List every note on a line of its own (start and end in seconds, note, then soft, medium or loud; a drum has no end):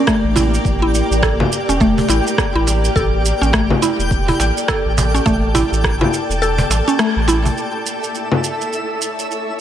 0.00 7.57 A#3 medium
0.00 4.37 G4 medium
0.00 7.58 G4 medium
0.00 2.95 A#4 medium
0.00 7.57 D5 medium
0.00 7.58 G5 medium
0.07 0.35 A3 loud
0.07 kick loud
0.07 cross-stick medium
0.07 shaker soft
0.24 0.58 A1 medium
0.36 0.46 E4 medium
0.36 cajon bass medium
0.36 cajon slap medium
0.36 shaker medium
0.54 shaker soft
0.65 1.02 A1 loud
0.65 kick loud
0.65 shaker soft
0.82 1.21 E4 medium
0.95 shaker medium
1.10 1.45 A1 loud
1.10 shaker soft
1.23 1.39 A4 medium
1.23 kick loud
1.23 cross-stick medium
1.23 shaker soft
1.40 low conga medium
1.52 shaker medium
1.69 2.03 E1 medium
1.69 1.80 C#4 medium
1.69 shaker soft
1.80 2.08 A3 loud
1.80 kick loud
1.80 shaker soft
1.97 cajon bass medium
1.97 cajon slap soft
2.08 2.20 A1 medium
2.08 2.19 E4 medium
2.08 cajon slap medium
2.08 shaker medium
2.27 shaker soft
2.38 kick loud
2.38 cross-stick medium
2.38 shaker soft
2.55 2.89 A1 medium
2.55 2.94 E4 medium
2.67 cajon slap medium
2.67 shaker medium
2.85 shaker soft
2.95 3.32 A1 loud
2.95 3.12 A4 medium
2.95 kick loud
2.95 shaker soft
3.20 9.60 A4 medium
3.26 shaker medium
3.41 3.76 A1 loud
3.41 3.52 C#4 medium
3.41 shaker soft
3.53 3.81 A3 loud
3.53 kick loud
3.53 cross-stick loud
3.53 shaker soft
3.70 low conga medium
3.82 3.92 E4 medium
3.82 cajon slap medium
3.82 shaker medium
3.99 4.33 E1 medium
3.99 shaker soft
4.11 kick loud
4.11 shaker soft
4.25 4.67 E4 medium
4.25 9.44 A5 medium
4.25 cajon bass medium
4.39 4.51 A1 medium
4.39 cajon slap medium
4.39 shaker medium
4.58 shaker soft
4.68 4.85 A4 medium
4.68 kick loud
4.68 cross-stick loud
4.68 shaker soft
4.85 5.20 A1 medium
4.98 cajon bass loud
4.98 cajon slap medium
4.98 shaker medium
5.14 5.25 C#4 medium
5.14 shaker soft
5.26 5.63 A1 loud
5.26 5.54 A3 loud
5.26 kick loud
5.26 shaker soft
5.55 5.65 E4 medium
5.55 cajon bass medium
5.55 cajon slap medium
5.55 shaker medium
5.72 6.06 A1 loud
5.72 shaker soft
5.84 kick loud
5.84 cross-stick medium
5.84 shaker soft
6.01 6.40 E4 medium
6.01 low conga medium
6.14 shaker medium
6.29 6.64 E1 medium
6.29 shaker soft
6.42 6.58 A4 medium
6.42 shaker soft
6.58 cajon bass medium
6.58 cajon slap soft
6.69 6.81 A1 medium
6.69 cajon slap medium
6.69 shaker medium
6.88 6.99 C#4 medium
6.88 shaker soft
6.99 7.27 A3 loud
6.99 cross-stick loud
6.99 shaker soft
7.16 7.51 A1 loud
7.28 7.38 E4 medium
7.28 cajon slap medium
7.28 shaker medium
7.45 cajon bass medium
7.45 shaker soft
7.56 9.60 E4 medium
7.56 9.60 E6 medium
7.56 shaker soft
7.84 9.60 E5 medium
7.84 shaker medium
8.04 shaker soft
8.15 9.60 C#5 medium
8.15 shaker soft
8.32 low conga medium
8.44 shaker medium
8.61 shaker soft
8.73 shaker soft
9.02 shaker medium
9.19 shaker soft
9.31 shaker soft